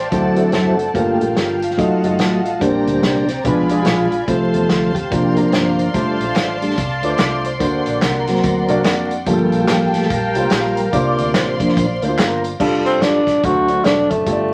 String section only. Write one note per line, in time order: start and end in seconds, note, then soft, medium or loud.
0.00 0.93 D5 medium
0.00 0.11 F5 medium
0.00 0.11 G5 medium
0.00 1.76 A5 medium
0.11 0.94 C5 medium
0.11 0.94 F#5 medium
0.95 1.78 A#3 medium
0.95 2.60 F5 medium
0.95 1.78 G5 medium
1.80 2.62 D#5 medium
1.80 2.61 F#5 medium
1.80 2.62 A5 medium
2.63 3.45 C5 medium
2.63 4.27 D5 medium
2.63 3.45 G5 medium
2.63 3.45 A#5 medium
3.45 4.28 F5 medium
3.45 4.27 G#5 medium
3.45 4.28 B5 medium
4.29 5.11 C5 medium
4.29 5.10 F5 medium
4.29 5.11 A5 medium
4.29 9.24 C6 medium
5.12 9.24 D5 medium
5.12 7.59 F5 medium
5.12 5.94 A#5 medium
5.94 7.59 A5 medium
7.62 9.26 F#5 medium
9.28 12.57 F5 medium
9.28 10.92 G5 medium
9.28 10.92 A5 medium
10.94 12.59 D5 medium
10.94 12.59 C6 medium